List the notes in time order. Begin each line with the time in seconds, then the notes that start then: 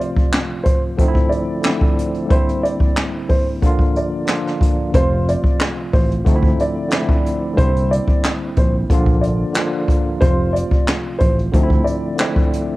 Already playing: C3 F3 A3 C4 F4
0.00 D5, closed hi-hat
0.16 kick
0.33 snare, clap, closed hi-hat
0.64 C5, kick, closed hi-hat
0.97 D3 F3 A3 C4, kick, closed hi-hat
1.02 D#4
1.08 E4
1.15 kick
1.29 D5, closed hi-hat
1.61 D3 F3 A3 C4, clap, closed hi-hat
1.65 E4, snare
1.81 kick
1.99 closed hi-hat
2.14 closed hi-hat
2.25 D3 G3 A#3 C4
2.30 E4 C5, kick, closed hi-hat
2.49 closed hi-hat
2.63 D5, closed hi-hat
2.80 kick
2.97 snare, clap, closed hi-hat
3.29 C5, kick, open hi-hat
3.62 D3 F3 A#3 D4, kick, closed hi-hat
3.66 F4
3.79 kick
3.96 D5, closed hi-hat
4.26 D3 F3 A#3 D4, snare, clap, closed hi-hat
4.30 F4
4.47 snare
4.61 kick, closed hi-hat
4.92 F1 C3 F3 A3 C4 C5, kick, closed hi-hat
4.97 F4
5.29 D5, closed hi-hat
5.44 kick
5.60 snare, clap, closed hi-hat
5.93 A1 C5, kick, open hi-hat
6.11 closed hi-hat
6.25 D2 D3 F3 A3 C4, kick, closed hi-hat
6.29 D#4
6.36 E4
6.43 kick
6.59 D5, closed hi-hat
6.89 D3 F3 A3 C4, clap, closed hi-hat
6.93 E4, snare
7.09 kick
7.26 closed hi-hat
7.53 D3 G3 A#3 C4
7.57 C2 E4 C5, kick, closed hi-hat
7.76 closed hi-hat
7.91 D5, closed hi-hat
8.08 kick
8.24 snare, clap, closed hi-hat
8.57 A#1 C5, kick, closed hi-hat
8.89 A#1 D3 F3 A#3 D4, kick, closed hi-hat
8.94 F4
9.06 kick
9.21 D5, closed hi-hat
9.53 D3 F3 A#3 D4, snare, clap, closed hi-hat
9.58 F4
9.88 kick, closed hi-hat
10.19 F1 C3 F3 A3 C4 C5, kick, closed hi-hat
10.24 F4
10.53 D5, closed hi-hat
10.71 kick
10.88 snare, clap, closed hi-hat
11.19 A1 C5, kick, closed hi-hat
11.39 closed hi-hat
11.52 D2 D3 F3 A3 C4, kick, closed hi-hat
11.57 D#4
11.63 E4
11.70 kick
11.84 D5, closed hi-hat
12.16 D3 F3 A3 C4, snare, clap, closed hi-hat
12.21 E4
12.36 kick
12.53 closed hi-hat